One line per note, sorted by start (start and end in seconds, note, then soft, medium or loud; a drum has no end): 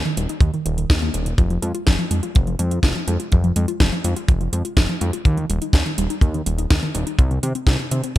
0.05 0.12 D#3 loud
0.05 closed hi-hat soft
0.17 0.27 D#1 medium
0.17 0.24 G3 medium
0.17 closed hi-hat medium
0.29 0.37 D#4 medium
0.29 closed hi-hat soft
0.41 0.51 D#2 medium
0.41 0.49 D#3 medium
0.41 kick loud
0.41 closed hi-hat soft
0.54 0.61 D#3 loud
0.54 closed hi-hat soft
0.65 0.86 D#1 medium
0.65 0.76 D#3 medium
0.65 closed hi-hat medium
0.78 0.88 D#3 medium
0.78 closed hi-hat soft
0.90 1.10 D#2 medium
0.90 0.94 D#4 medium
0.90 kick loud
0.90 snare loud
0.90 closed hi-hat soft
1.02 1.09 A#3 loud
1.02 closed hi-hat soft
1.14 1.34 D#1 medium
1.14 1.25 A#2 medium
1.14 closed hi-hat medium
1.26 1.33 A#2 medium
1.26 closed hi-hat medium
1.38 1.58 F1 loud
1.38 1.45 F3 medium
1.38 kick loud
1.38 closed hi-hat soft
1.50 1.57 F3 loud
1.50 closed hi-hat soft
1.62 1.72 F2 medium
1.62 1.70 G#3 medium
1.62 closed hi-hat medium
1.74 1.82 F4 medium
1.74 closed hi-hat soft
1.87 1.97 F1 medium
1.87 1.94 F3 medium
1.87 kick loud
1.87 snare loud
1.87 closed hi-hat soft
1.99 2.06 F3 loud
1.99 closed hi-hat soft
2.11 2.21 F2 medium
2.11 2.18 G#3 medium
2.11 closed hi-hat medium
2.23 2.30 F4 medium
2.23 closed hi-hat soft
2.35 2.56 F1 medium
2.35 2.42 F3 medium
2.35 kick loud
2.35 closed hi-hat soft
2.47 2.54 F3 loud
2.47 closed hi-hat soft
2.59 2.79 F2 medium
2.59 2.66 G#3 medium
2.59 closed hi-hat medium
2.71 2.78 F4 medium
2.71 closed hi-hat soft
2.83 2.93 F1 medium
2.83 2.90 F3 medium
2.83 kick loud
2.83 snare loud
2.83 closed hi-hat soft
2.95 3.03 F3 loud
2.95 closed hi-hat soft
3.08 3.18 F2 medium
3.08 3.15 G#3 medium
3.08 closed hi-hat medium
3.20 3.27 F4 medium
3.20 closed hi-hat medium
3.32 3.52 F1 loud
3.32 3.39 F3 medium
3.32 kick loud
3.32 closed hi-hat soft
3.44 3.51 F3 loud
3.44 closed hi-hat soft
3.56 3.66 F2 medium
3.56 3.63 G#3 medium
3.56 closed hi-hat medium
3.68 3.75 F4 medium
3.68 closed hi-hat soft
3.80 3.90 F1 loud
3.80 3.87 F3 medium
3.80 kick loud
3.80 snare loud
3.80 closed hi-hat soft
3.92 3.99 F3 loud
3.92 closed hi-hat soft
4.04 4.15 F2 medium
4.04 4.11 G#3 medium
4.04 closed hi-hat medium
4.16 4.24 F4 medium
4.16 closed hi-hat medium
4.28 4.49 F1 medium
4.28 4.36 F3 medium
4.28 kick loud
4.28 closed hi-hat medium
4.40 4.48 F3 medium
4.40 closed hi-hat soft
4.53 4.63 F2 medium
4.53 4.60 G#3 medium
4.53 closed hi-hat medium
4.65 4.72 F4 medium
4.65 closed hi-hat soft
4.77 4.87 F1 medium
4.77 4.84 F3 medium
4.77 kick loud
4.77 snare loud
4.77 closed hi-hat medium
4.89 4.96 F3 loud
4.89 closed hi-hat soft
5.01 5.11 F2 medium
5.01 5.08 G#3 medium
5.01 closed hi-hat medium
5.13 5.20 F4 medium
5.13 closed hi-hat medium
5.25 5.45 D#2 loud
5.25 5.32 D#3 medium
5.25 kick loud
5.25 closed hi-hat medium
5.37 5.45 D#3 loud
5.37 closed hi-hat soft
5.50 5.60 D#1 medium
5.50 5.57 G3 medium
5.50 closed hi-hat medium
5.62 5.69 D#4 medium
5.62 closed hi-hat medium
5.73 5.84 D#2 medium
5.73 5.81 D#3 medium
5.73 kick loud
5.73 snare loud
5.73 closed hi-hat medium
5.86 5.93 D#3 loud
5.86 closed hi-hat soft
5.98 6.08 D#1 medium
5.98 6.05 G3 medium
5.98 closed hi-hat medium
6.10 6.17 D#4 medium
6.10 closed hi-hat medium
6.21 6.42 D#2 medium
6.21 6.29 D#3 medium
6.21 kick loud
6.21 closed hi-hat medium
6.34 6.41 D#3 loud
6.34 closed hi-hat soft
6.46 6.67 D#1 medium
6.46 6.53 G3 medium
6.46 closed hi-hat medium
6.58 6.65 D#4 medium
6.58 closed hi-hat medium
6.70 6.81 D#2 medium
6.70 6.78 D#3 medium
6.70 kick loud
6.70 snare loud
6.70 closed hi-hat medium
6.83 6.90 D#3 loud
6.83 closed hi-hat soft
6.95 7.05 D#1 medium
6.95 7.02 G3 medium
6.95 closed hi-hat medium
7.07 7.14 D#4 medium
7.07 closed hi-hat medium
7.19 7.39 C2 loud
7.19 7.26 C3 medium
7.19 kick loud
7.19 closed hi-hat medium
7.31 7.38 C3 loud
7.31 closed hi-hat soft
7.43 7.53 C3 medium
7.43 7.50 D#3 medium
7.43 closed hi-hat medium
7.55 7.62 C4 medium
7.55 closed hi-hat medium
7.67 7.77 C2 loud
7.67 7.74 C3 medium
7.67 kick loud
7.67 snare loud
7.67 closed hi-hat soft
7.79 7.86 C3 loud
7.79 closed hi-hat soft
7.91 8.02 C3 medium
7.91 7.99 D#3 medium
7.91 closed hi-hat loud
8.04 8.11 C4 medium
8.04 closed hi-hat medium